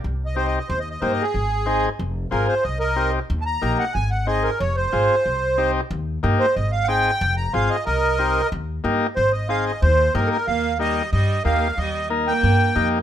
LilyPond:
<<
  \new Staff \with { instrumentName = "Accordion" } { \time 4/4 \key ees \major \tempo 4 = 184 \tuplet 3/2 { r4 ees''8 c''8 ees''8 ees''8 c''8 ees''8 ees''8 c''8 ees''8 aes'8~ } | aes'4. r4. bes'8 c''8 | ees''8 <bes' ees''>4 r4 <a'' bes''>4 ges''8 | aes''8 ges''8 ees''8 bes'8 des''8 c''4.~ |
c''4. r2 c''8 | ees''8 f''8 <ges'' g''>4. bes''8 f''8 ees''8 | <bes' ees''>2 r2 | c''8 ees''8 f''8 ees''8 c''4 bes'8 <a' bes'>8 |
f''4 ees''4 ees''4 f''4 | ees''4 r8 g''2 r8 | }
  \new Staff \with { instrumentName = "Transistor combo organ" } { \time 4/4 \key ees \major r4 <c' ees' g'>8 r4. <bes ees' g'>8 r8 | r4 <c' ees' aes'>8 r4. <c' f' aes'>8 r8 | r4 <c' ees' g'>8 r4. <bes ees' g'>8 r8 | r4 <c' ees' aes'>8 r4. <c' f' aes'>8 r8 |
r4 <c' ees' g'>8 r4. <bes ees' g'>8 r8 | r4 <c' ees' aes'>8 r4. <c' f' aes'>8 r8 | r4 <c' ees' g'>8 r4. <bes ees' g'>8 r8 | r4 <c' ees' aes'>8 r4. <bes ees' g'>8 r8 |
r4 <bes ees' g'>8 r4. <bes ees' g'>8 r8 | r4 <bes ees' bes'>8 r4. <bes ees' g'>8 r8 | }
  \new Staff \with { instrumentName = "Viola" } { \clef bass \time 4/4 \key ees \major r1 | r1 | r1 | r1 |
r1 | r1 | r1 | r1 |
bes4 g4 g4 bes4 | g4 r8 bes2 r8 | }
  \new Staff \with { instrumentName = "Upright bass" } { \clef bass \time 4/4 \key ees \major c,2 ees,4 g,8 r8 | aes,,2 f,,4 aes,,8 r8 | c,2 ees,4 bes,,8 r8 | aes,,2 f,,4 aes,,8 r8 |
c,2 ees,4 g,8 r8 | aes,,2 f,,4 aes,,8 r8 | c,2 ees,4 g,8 r8 | aes,,2 ees,4 g,8 r8 |
ees,2 g,4 ees,4 | ees,2 g,4 f,4 | }
>>